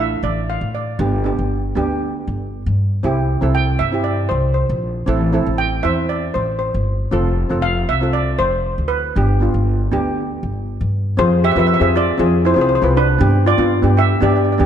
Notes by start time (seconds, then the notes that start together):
Already playing: A1 A3 D4 E4
0.00 E5
0.23 A1 D5
0.50 F5
0.61 A2
0.75 D5
0.99 G1 B3 D4 G4
1.24 B3 D4 G4
1.39 G1
1.75 D2 B3 D4 G4
2.27 G1
2.66 G2
3.03 C2 C4 E4 G4
3.41 C2 C4 E4 A4
3.55 G5
3.79 G2 E5
3.91 C4 E4 G4
4.04 D5
4.29 C2 C5
4.54 C5
4.69 A#1
5.06 A1 C4 E4 A4
5.33 C4 E4 A4
5.46 A1
5.58 G5
5.83 E2 C4 E4 C5 E5
6.09 D5
6.34 A1 C5
6.59 C5
6.74 G1
7.11 F1 C4 F4 A4
7.50 F1 C4 F4 A4
7.62 F5
7.89 C2 E5
8.01 C4 F4 A4
8.13 D5
8.39 F1 C5
8.78 D2
8.88 B4
9.15 G1 B3 D4 G4
9.40 B3 D4 F4
9.54 G1
9.92 D2 B3 D4 G4
10.43 G1
10.81 G2
11.17 F2 C4 F4 G#4 C5
11.44 G4 E5
11.52 C4 E5
11.56 F2 F4 B4 E5
11.67 E5
11.74 E5
11.80 F2 C4 F4 G#4 E5
11.96 F4 D5
12.18 F2 C4 F4 G#4
12.45 E4 C5
12.54 C2 C4 F4 C5
12.58 G#4 C5
12.69 C5
12.75 C5
12.82 C2 C4 F4 B4 C5
12.97 D4 B4
13.18 G2 B3 D4 G4
13.46 F4 D5
13.58 G2 B3 D4 F4
13.82 G2 B3 D4 G4
13.97 G4 E5
14.21 G2 B3 D4 G4 D5
14.30 D5
14.36 D5
14.45 D5
14.52 D5
14.58 D2 B3 D4 G4 D5